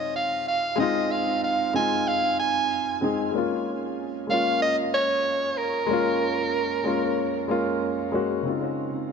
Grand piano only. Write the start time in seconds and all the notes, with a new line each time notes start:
Already playing: C3 G#3 C4 D#4 F4
0.76 G#3 C4
0.80 D#4 F4
1.73 G#3 C4 D#4 F4
3.01 G#3 C4 D#4 G#4
3.31 G#3 A#3
3.36 C#4 F4
4.27 G#3 A#3
4.32 C#4 F4
5.86 G#3 A#3
5.91 C#4 F4
6.84 G#3 A#3 C#4 F4
7.48 G#3 A#3 C#4 F4
8.12 G#3 A#3 C#4 F#4
8.42 C#3 G#3 C4
8.47 D#4 F4